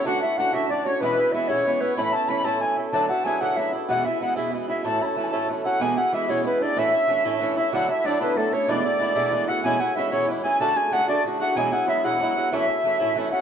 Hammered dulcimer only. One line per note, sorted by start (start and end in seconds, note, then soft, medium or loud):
0.00 1.02 B3 medium
0.00 0.76 C#4 medium
0.00 0.23 E4 medium
0.07 0.39 F#4 medium
0.24 0.55 E4 medium
0.39 3.08 F#4 medium
0.55 1.34 E4 medium
0.70 0.92 D4 medium
0.86 1.49 C#4 medium
1.02 1.81 B3 medium
1.34 3.56 E4 medium
1.49 5.35 C#4 medium
1.81 5.96 B3 medium
1.97 2.29 B4 medium
2.13 2.45 A4 medium
2.30 5.03 B4 medium
2.46 2.93 A4 medium
2.94 3.31 A4 medium
3.09 3.41 F#4 medium
3.25 4.90 G#4 medium
3.41 3.88 F#4 medium
3.57 4.04 E4 medium
3.88 5.65 F#4 medium
4.04 4.36 E4 medium
4.37 4.69 E4 medium
4.69 6.13 E4 medium
4.84 5.06 A4 medium
5.06 5.28 A4 medium
5.28 5.88 A4 medium
5.65 5.97 F#4 medium
5.82 8.42 G#4 medium
5.97 7.72 F#4 medium
6.13 6.76 E4 medium
6.29 6.67 C#4 medium
6.44 8.20 B3 medium
6.61 8.04 D4 medium
6.76 7.56 E4 medium
7.57 7.88 E4 medium
7.72 9.48 F#4 medium
7.88 9.32 E4 medium
8.04 8.58 D4 medium
8.20 12.34 B3 medium
8.36 9.70 A3 medium
8.52 8.74 C#4 medium
8.68 10.19 D4 medium
9.33 9.96 E4 medium
9.48 9.80 F#4 medium
9.64 10.44 G#4 medium
9.80 11.40 F#4 medium
9.97 11.87 E4 medium
10.13 11.15 C#4 medium
10.45 10.67 G#4 medium
10.61 10.82 A4 medium
10.76 10.87 G#4 medium
10.87 10.98 G#4 medium
10.98 11.56 G#4 loud
11.09 13.41 D4 medium
11.40 11.72 F#4 medium
11.57 13.41 G#4 medium
11.72 12.04 F#4 medium
11.88 12.52 E4 medium
12.05 13.31 F#4 medium
12.53 13.41 E4 medium
13.32 13.41 F#4 medium